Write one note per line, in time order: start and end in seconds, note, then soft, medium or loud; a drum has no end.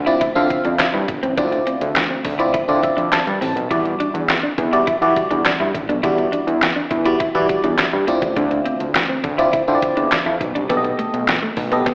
0.00 0.17 D2 loud
0.06 0.21 C4 medium
0.06 0.15 E4 medium
0.06 0.21 E4 medium
0.06 0.21 F4 medium
0.06 0.22 D5 loud
0.06 closed hi-hat medium
0.21 0.27 D3 soft
0.21 0.29 E4 medium
0.21 kick loud
0.21 closed hi-hat medium
0.35 0.48 D3 loud
0.35 0.87 C4 loud
0.35 0.87 F4 medium
0.35 0.87 E5 medium
0.35 0.87 F5 loud
0.35 closed hi-hat soft
0.50 muted clean electric guitar stroke soft
0.50 kick medium
0.50 closed hi-hat medium
0.65 0.77 F2 loud
0.65 0.73 D4 medium
0.65 closed hi-hat soft
0.79 snare loud
0.79 clap medium
0.79 closed hi-hat loud
0.94 1.06 G2 medium
0.94 1.02 E4 medium
1.08 1.21 G1 medium
1.08 muted clean electric guitar stroke soft
1.08 kick medium
1.08 closed hi-hat medium
1.23 1.35 A1 medium
1.23 1.31 C4 medium
1.23 closed hi-hat soft
1.37 1.62 D2 loud
1.37 1.89 C4 medium
1.37 1.46 D4 medium
1.37 1.89 E4 medium
1.37 1.89 F4 medium
1.37 1.89 D5 loud
1.37 kick loud
1.37 closed hi-hat medium
1.52 muted clean electric guitar stroke soft
1.52 closed hi-hat soft
1.67 1.75 C4 medium
1.67 closed hi-hat medium
1.81 2.06 D2 loud
1.81 closed hi-hat medium
1.96 snare loud
1.96 clap medium
1.96 closed hi-hat medium
2.11 2.19 C4 medium
2.25 2.50 D2 medium
2.25 muted clean electric guitar stroke soft
2.25 kick medium
2.25 open hi-hat medium
2.39 2.54 C4 medium
2.39 2.47 E4 medium
2.39 2.54 E4 medium
2.39 2.54 F4 medium
2.39 2.55 D5 loud
2.39 closed hi-hat medium
2.54 2.60 D3 soft
2.54 2.62 E4 medium
2.54 kick loud
2.54 closed hi-hat medium
2.68 2.81 D3 medium
2.68 3.20 C4 medium
2.68 3.20 E4 medium
2.68 3.20 F4 medium
2.68 3.20 D5 loud
2.68 closed hi-hat soft
2.83 3.10 E5 medium
2.83 muted clean electric guitar stroke soft
2.83 kick medium
2.83 closed hi-hat medium
2.97 3.10 F2 medium
2.97 3.05 D4 medium
2.97 closed hi-hat soft
3.12 3.67 A5 medium
3.12 snare loud
3.12 clap medium
3.12 closed hi-hat loud
3.27 3.39 G2 medium
3.27 closed hi-hat soft
3.41 3.54 A1 medium
3.41 3.50 C4 medium
3.41 open hi-hat medium
3.56 3.68 B1 medium
3.56 closed hi-hat soft
3.70 3.95 E2 loud
3.70 4.22 G3 medium
3.70 3.79 E4 medium
3.70 4.22 E4 medium
3.70 4.22 F#4 medium
3.70 4.23 D5 loud
3.70 kick loud
3.70 closed hi-hat medium
3.85 muted clean electric guitar stroke soft
3.85 closed hi-hat soft
4.00 4.08 D4 medium
4.00 closed hi-hat medium
4.14 4.39 E2 medium
4.14 closed hi-hat medium
4.29 snare loud
4.29 clap medium
4.29 closed hi-hat medium
4.43 4.52 D4 medium
4.58 4.83 E2 loud
4.58 muted clean electric guitar stroke soft
4.58 kick medium
4.58 closed hi-hat medium
4.73 4.87 G3 medium
4.73 4.87 E4 medium
4.73 4.81 E4 medium
4.73 4.88 F#4 medium
4.73 4.88 D5 loud
4.73 closed hi-hat medium
4.87 4.93 E3 soft
4.87 4.95 E4 medium
4.87 kick loud
4.87 closed hi-hat medium
5.01 5.14 E3 medium
5.01 5.08 F#3 medium
5.01 5.53 E4 medium
5.01 5.53 F#4 medium
5.01 5.53 D5 loud
5.01 closed hi-hat soft
5.08 5.56 G3 loud
5.16 muted clean electric guitar stroke soft
5.16 kick medium
5.16 closed hi-hat medium
5.31 5.43 E2 medium
5.31 5.39 D4 medium
5.31 closed hi-hat soft
5.45 snare loud
5.45 clap medium
5.45 closed hi-hat medium
5.60 5.72 G2 medium
5.60 5.68 E4 medium
5.74 5.87 A1 medium
5.74 muted clean electric guitar stroke soft
5.74 kick medium
5.74 closed hi-hat medium
5.89 6.01 B1 medium
5.89 5.97 D4 medium
5.89 closed hi-hat soft
6.03 6.28 E2 loud
6.03 6.55 G3 medium
6.03 6.12 E4 medium
6.03 6.55 E4 medium
6.03 6.55 F#4 medium
6.03 6.56 D5 loud
6.03 kick loud
6.03 closed hi-hat medium
6.18 muted clean electric guitar stroke soft
6.18 closed hi-hat soft
6.32 6.41 D4 medium
6.32 closed hi-hat medium
6.47 6.72 E2 loud
6.47 closed hi-hat medium
6.62 snare loud
6.62 clap medium
6.62 closed hi-hat medium
6.76 6.84 D4 medium
6.91 7.16 E2 medium
6.91 muted clean electric guitar stroke soft
6.91 kick medium
6.91 closed hi-hat medium
7.05 7.20 G3 loud
7.05 7.20 E4 medium
7.05 7.14 E4 medium
7.05 7.21 F#4 medium
7.05 7.21 D5 loud
7.05 closed hi-hat medium
7.20 7.26 E3 soft
7.20 7.28 E4 medium
7.20 kick loud
7.20 closed hi-hat medium
7.35 7.47 E3 medium
7.35 7.86 G3 medium
7.35 7.86 E4 medium
7.35 7.86 F#4 medium
7.35 7.87 D5 loud
7.35 closed hi-hat soft
7.49 muted clean electric guitar stroke soft
7.49 kick medium
7.49 closed hi-hat medium
7.64 7.76 E2 medium
7.64 7.72 D4 medium
7.64 closed hi-hat soft
7.78 snare loud
7.78 clap medium
7.78 closed hi-hat loud
7.93 8.05 G2 medium
8.07 8.20 D2 medium
8.07 8.16 C4 medium
8.07 9.01 C4 medium
8.07 9.01 E4 medium
8.07 9.01 F4 medium
8.07 9.01 D5 medium
8.07 closed hi-hat medium
8.22 8.34 A1 medium
8.22 kick loud
8.22 closed hi-hat soft
8.36 8.61 D2 loud
8.36 8.45 D4 medium
8.36 kick loud
8.36 closed hi-hat medium
8.51 muted clean electric guitar stroke soft
8.51 closed hi-hat soft
8.65 8.74 C4 medium
8.65 closed hi-hat medium
8.80 9.05 D2 medium
8.80 closed hi-hat medium
8.95 snare loud
8.95 clap medium
8.95 closed hi-hat medium
9.09 9.18 C4 medium
9.24 9.49 D2 loud
9.24 muted clean electric guitar stroke soft
9.24 kick medium
9.24 closed hi-hat medium
9.38 9.53 C4 medium
9.38 9.47 E4 medium
9.38 9.53 E4 medium
9.38 9.54 F4 medium
9.38 9.54 D5 loud
9.38 closed hi-hat medium
9.53 9.59 D3 soft
9.53 9.61 E4 medium
9.53 kick loud
9.53 closed hi-hat medium
9.68 9.80 D3 medium
9.68 10.19 C4 loud
9.68 10.19 E4 medium
9.68 10.19 F4 medium
9.68 9.75 C5 medium
9.68 closed hi-hat soft
9.75 10.23 D5 loud
9.82 muted clean electric guitar stroke soft
9.82 kick medium
9.82 closed hi-hat medium
9.97 10.09 E2 medium
9.97 10.05 D4 medium
9.97 closed hi-hat soft
10.12 snare loud
10.12 clap medium
10.12 closed hi-hat loud
10.26 10.38 F2 medium
10.26 10.35 E4 medium
10.41 10.53 B1 medium
10.41 muted clean electric guitar stroke soft
10.41 kick medium
10.41 closed hi-hat medium
10.55 10.68 C2 medium
10.55 10.64 D4 medium
10.55 closed hi-hat soft
10.69 10.95 B1 loud
10.69 10.78 B3 medium
10.69 11.21 B3 medium
10.69 11.21 G4 medium
10.69 11.21 A4 medium
10.69 10.77 D5 medium
10.69 kick loud
10.69 closed hi-hat medium
10.77 11.25 D#5 medium
10.84 muted clean electric guitar stroke soft
10.84 closed hi-hat soft
10.99 11.07 A3 medium
10.99 closed hi-hat medium
11.14 11.38 B1 loud
11.14 closed hi-hat soft
11.28 snare loud
11.28 clap medium
11.28 closed hi-hat medium
11.43 11.51 A3 medium
11.57 11.82 B1 loud
11.57 muted clean electric guitar stroke soft
11.57 kick medium
11.57 open hi-hat medium
11.72 11.80 B3 medium
11.72 11.86 B3 medium
11.72 11.87 G4 medium
11.72 11.87 A4 medium
11.72 11.87 D#5 loud
11.72 closed hi-hat medium
11.86 11.92 B2 soft
11.86 11.94 B3 medium
11.86 kick loud
11.86 clap medium
11.86 closed hi-hat medium